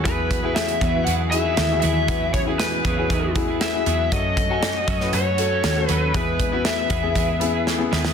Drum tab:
HH |x-x-xxx-x-x-x-x-|x-x-x-x-x-x-x-x-|x-x-x-x-x-x-x-x-|x-x-x-x-x-x-----|
SD |----o-------o---|----o-------o---|----o--o----o---|----o-------o-oo|
BD |o-o---o---------|o-o---o-o-o-----|o-o---o---------|o-o---o-o-------|